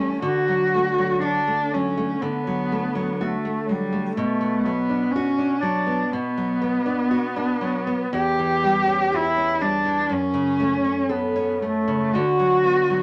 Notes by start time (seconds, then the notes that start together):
Already playing: E3 G3 A3 C#4
0.22 D3 F#4
0.48 F#3
0.75 A3
0.99 F#3
1.21 D4 F#4
1.47 A3
1.73 F#3 C#4
1.97 A3
2.22 D3 B3
2.47 F#3
2.72 A3
2.95 F#3
3.21 A3 F#4
3.45 A3
3.69 F#3 G3
3.92 A3
4.17 B2 A3
4.41 B3
4.65 F#3 B3
4.89 D4
5.11 C#4
5.16 F#4
5.38 D4
5.61 F#3 D4
5.87 B3
6.12 B2 B3
6.38 F#3
6.62 B3
6.86 D4
7.11 F#4
7.36 D4
7.61 F#3
7.87 B3
8.13 E2 G4
8.39 E3
8.63 G3
8.88 C#4
9.12 E4 G4
9.37 C#4
9.61 G3 D4
9.85 E3
10.10 F#2 C#4
10.34 C#3
10.60 A3
10.84 C#4
11.09 B3 A4
11.36 C#4
11.62 A3
11.88 C#3
12.14 D3 F#4
12.39 F#3
12.64 B3
12.90 F#3